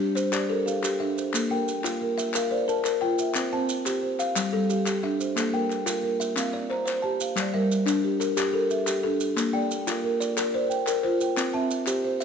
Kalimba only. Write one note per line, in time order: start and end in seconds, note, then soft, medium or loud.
0.00 0.16 D4 medium
0.15 0.66 C5 medium
0.32 0.65 G4 medium
0.49 1.00 A4 medium
0.66 0.82 G4 medium
0.83 1.17 G4 medium
1.00 1.51 E5 medium
1.34 1.68 A#3 medium
1.51 2.01 G5 medium
1.84 2.18 F4 medium
2.18 2.68 E5 medium
2.34 2.67 A#4 medium
2.51 3.02 C5 medium
2.68 2.83 A#4 medium
2.84 3.18 A#4 medium
3.01 3.52 G5 medium
3.35 3.69 C4 medium
3.53 4.03 A5 medium
3.86 4.20 G4 medium
4.19 4.53 F5 medium
4.36 4.70 G3 medium
4.53 5.03 A4 medium
4.69 4.85 G4 medium
4.86 5.20 G4 medium
5.03 5.54 E5 medium
5.36 5.70 A#3 medium
5.54 6.04 G5 medium
5.86 6.20 F4 medium
6.20 6.54 E5 medium
6.36 6.70 C4 medium
6.53 7.04 D5 medium
6.70 6.84 C5 medium
6.86 7.20 C5 medium
7.02 7.53 A5 medium
7.36 7.70 G3 medium
7.54 8.04 E5 medium
7.86 8.20 D4 medium
8.20 8.70 A#4 medium
8.37 8.70 G4 medium
8.53 9.02 A4 medium
8.87 9.21 G4 medium
9.03 9.54 A4 medium
9.36 9.70 A#3 medium
9.53 10.04 G5 medium
9.87 10.21 F4 loud
10.20 10.71 D5 medium
10.37 10.71 A#4 medium
10.54 11.02 C5 medium
10.87 11.21 A#4 medium
11.03 11.54 C5 medium
11.37 11.71 C4 medium
11.54 12.04 A5 medium
11.87 12.21 G4 loud
12.20 12.25 E5 medium